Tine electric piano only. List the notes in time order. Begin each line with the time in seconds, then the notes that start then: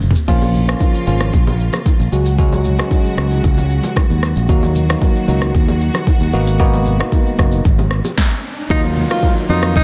0.28 F3 A#3 C#4 F4
0.68 F3 A#3 C#4 F4
1.07 F3 A#3 C#4 F4
2.12 F#3 G#3 C#4 F#4
2.38 F#3 G#3 C#4 F#4
2.78 F#3 G#3 C#4 F#4
3.17 F#3 G#3 C#4 F#4
4.49 F#3 A#3 D#4 F#4
4.89 F#3 A#3 D#4 F#4
5.28 F#3 A#3 D#4 F#4
6.33 A#3 B3 D#4 F#4
6.59 A#3 B3 D#4 F#4
6.99 A#3 B3 D#4 F#4
7.38 A#3 B3 D#4 F#4
8.70 F#3 A#3 D#4 F4
9.10 F#3 A#3 D#4 F4
9.49 F#3 A#3 D#4 F4